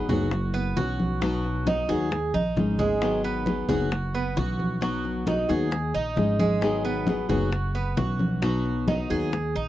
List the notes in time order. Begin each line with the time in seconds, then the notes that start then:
0.09 F#1 F#3 B3 D#4 F#4 G#4, high bongo, high conga, low conga
0.31 muted nylon-string guitar stroke, high bongo, high conga
0.54 B3, high conga
0.76 B1 E3 B3 C#4 F#4, high bongo, low bongo
0.99 high bongo, high conga
1.21 B2 F#3 B3 D#4 F#4, high bongo, high conga
1.44 high bongo, high conga
1.66 F#3 B3 D#4 F#4, high bongo, high conga
1.89 D#2 F#3 B3 D#4 F#4 G#4, high bongo
2.11 muted nylon-string guitar stroke, high bongo, high conga
2.34 A#1 D#4, high conga
2.56 G#1 G#3 C#4 D#4 G#4, high bongo, low bongo, high conga
2.79 G#3, high bongo, low conga
3.01 D#3 F#3 B3 D#4 G#4, high bongo, high conga
3.24 B3, high bongo, high conga
3.46 F#3 B3 D#4 G#4, high bongo, high conga
3.69 F#1 F#3 B3 D#4 F#4 G#4, high bongo, high conga, low conga
3.91 muted nylon-string guitar stroke, high bongo, high conga
4.14 B3, high conga
4.36 B1 E3 B3 C#4 F#4, high bongo, low bongo, high conga
4.59 high bongo, high conga
4.81 B2 F#3 B3 D#4 F#4, high bongo, high conga
5.05 high bongo, high conga
5.26 F#3 B3 D#4 F#4, high bongo, high conga
5.49 D#2 F#3 B3 D#4 F#4 G#4, high bongo
5.71 muted nylon-string guitar stroke, high bongo, high conga
5.94 A#1 D#4, high conga
6.16 G#1 G#3 C#4 D#4 G#4, high bongo, low bongo, high conga
6.39 G#3, high bongo, high conga
6.61 D#3 F#3 B3 D#4 G#4, high bongo, high conga
6.84 B3, high bongo, high conga
7.06 F#3 B3 D#4 G#4, high bongo, high conga
7.29 F#1 F#3 B3 D#4 F#4 G#4, high bongo, high conga, low conga
7.52 muted nylon-string guitar stroke, high bongo, high conga
7.75 B3, high conga
7.96 B1 E3 B3 C#4 F#4, high bongo, low bongo
8.19 high bongo, high conga
8.42 B2 F#3 B3 D#4 F#4, high bongo, high conga
8.65 high bongo, high conga
8.87 F#3 B3 D#4 F#4, high bongo, high conga
9.10 D#2 F#3 B3 D#4 F#4 G#4, high bongo
9.32 muted nylon-string guitar stroke, high bongo, high conga
9.55 A#1 D#4, high conga